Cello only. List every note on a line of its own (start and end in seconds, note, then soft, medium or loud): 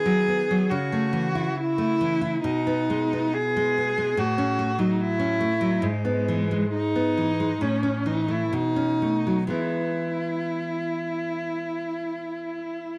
0.00 0.72 G#4 medium
0.70 1.58 F#4 medium
1.56 2.43 E4 medium
2.43 3.36 D#4 medium
3.34 4.20 G#4 medium
4.19 4.81 F#4 medium
4.79 5.02 D#4 medium
5.00 5.85 E4 medium
5.83 6.73 G#3 medium
6.74 7.63 D#4 medium
7.62 8.08 C#4 medium
8.07 8.33 D#4 medium
8.31 8.54 E4 medium
8.53 9.51 D#4 medium
9.52 12.93 E4 medium